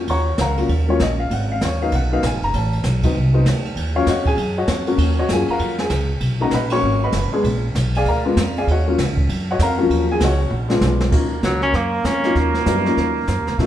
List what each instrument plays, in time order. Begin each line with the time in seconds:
Already playing: upright piano A#3 C#4 F4 F#4
0.07 upright bass D#2, upright piano C#5 F#5 A#5 C#6, kick, ride
0.38 upright bass C#2, upright piano A#4 F5 F#5 A#5, kick, snare, hi-hat pedal, ride
0.57 upright piano F#3 A#3 C#4 F4, ride
0.69 upright bass D#2, kick, ride
0.88 upright piano F#3 A#3 C#4 F4 C#5
1.00 upright bass A#1, upright piano D#5, kick, snare, hi-hat pedal, ride
1.20 upright piano F5
1.30 upright bass G#1, upright piano F#5, kick, ride
1.52 upright piano F5
1.61 upright bass D#2, kick, snare, hi-hat pedal, ride
1.65 upright piano C#5
1.81 upright piano F#3 A#3 B3 D#4 F5
1.92 upright bass B1, upright piano F#5, kick, ride
2.12 upright piano F#3 A#3 B3 D#4 F5
2.23 upright bass A#1, upright piano G#5, kick, snare, hi-hat pedal, ride
2.33 upright bass G#1
2.42 upright bass F#1, upright piano A#5, ride
2.53 upright bass A1, upright piano A5, kick, ride
2.73 ride
2.84 upright bass B1, kick, snare, hi-hat pedal, ride
3.03 upright piano F#3 B3 C4 D#4, kick, ride
3.14 upright bass C2, kick
3.33 upright piano F#3 B3 C4 D#4
3.45 upright bass D2, kick, snare, hi-hat pedal, ride
3.65 ride
3.76 upright bass D#2, kick, ride
3.96 upright piano F#3 A#3 C#4 F4 A#4 C#5 F5
4.06 upright bass F2, upright piano F#4 C#5 D#5 F#5, kick, snare, hi-hat pedal, ride
4.26 upright piano G#4 G#5, kick, ride
4.37 upright bass F#2, kick, ride
4.58 upright piano F#4 C#5 D#5 F#5
4.67 upright bass F2, kick, snare, hi-hat pedal, ride
4.87 upright piano F#3 A#3 C#4 F#4, ride
4.98 upright bass D#2, kick, ride
5.19 upright piano F#4 C#5 D#5 F#5
5.29 upright bass F#2, upright piano F#3 A#3 C#4 F4, kick, snare, hi-hat pedal, ride
5.33 upright piano G#4 G#5
5.48 upright piano A#4 F5 F#5 A#5, muted upright bass stroke, ride
5.59 upright bass F2, kick, ride
5.78 upright piano G#4 G#5, snare
5.90 upright bass C#2, kick, snare, hi-hat pedal, ride
6.20 upright bass B1, kick, ride
6.40 upright piano F#3 A#3 C#4 D#4 A#4 D#5 F#5 A#5
6.51 upright bass A#1, upright piano B4 D#5 F#5 B5, kick, snare, hi-hat pedal, ride
6.70 upright piano F#3 A#3 C#4 F#4 C#5 C#6, ride
6.81 upright bass G#1, kick
7.04 upright piano B4 D#5 F#5 B5
7.12 upright bass F#1, kick, snare, hi-hat pedal, ride
7.32 upright piano G#3 B3 D4 G#4, muted upright bass stroke
7.44 upright bass A#1, kick, ride
7.75 upright bass B1, kick, snare, hi-hat pedal, ride
7.94 upright piano G#4 D5 F5 G#5, ride
8.05 upright bass D2, upright piano A#4 D5 F5 A#5, kick, ride
8.25 upright piano G#3 B3 D4 F4
8.36 upright bass F2, kick, snare, hi-hat pedal, ride
8.56 upright piano G#4 D5 F5 G#5, ride
8.67 upright bass D#2, upright piano F#4 F#5, kick, ride
8.71 upright piano C#5 D#5
8.87 upright piano F#3 A#3 C#4 F4
8.98 upright bass C#2, kick, snare, hi-hat pedal, ride
9.17 kick
9.29 upright bass F#2, ride
9.51 upright piano F#4 C#5 D#5 F#5
9.59 upright bass F2, upright piano A#5, kick, snare, hi-hat pedal, ride
9.63 upright piano A#4 F5 F#5
9.77 upright piano F3 F#3 A#3 C#4
9.90 upright bass D#2, kick, ride
10.12 upright piano G#4 G#5
10.20 upright bass C#2, upright piano D#5 F#5, kick, snare, hi-hat pedal, ride
10.24 upright piano F#4 C#5
10.50 upright bass A#1
10.69 upright piano G#3 B3 D4 F4, snare
10.81 upright bass B1, snare, hi-hat pedal
11.00 snare
11.12 upright bass D#2, upright piano F#3 A#3 C#4 D#4 F4, trumpet A#3, brush sweep, kick, snare, crash
11.43 upright bass C#2, tenor saxophone F#3, kick, snare, hi-hat pedal
11.62 tenor saxophone C#4, snare
11.73 upright bass F#2, tenor saxophone A#3, brush sweep, kick, snare
12.04 upright bass F2, tenor saxophone C#4, kick, snare, hi-hat pedal
12.24 upright piano F#3 A#3 C#4 D#4 F4, snare
12.35 upright bass D#2, brush sweep, kick, snare
12.54 snare
12.66 upright bass F#2, upright piano G3 B3 D4 E4 F#4, kick, snare, hi-hat pedal
12.85 upright piano F#3 A#3 C#4 D#4 F4, snare
12.97 upright bass D#2, brush sweep, kick, snare
13.27 upright bass F#2, kick, snare, hi-hat pedal
13.38 upright bass D#2
13.47 upright bass C#2, snare
13.58 upright bass A#2, upright piano F#3 A#3 C#4 D#4 F4, trumpet A#3, brush sweep, kick, snare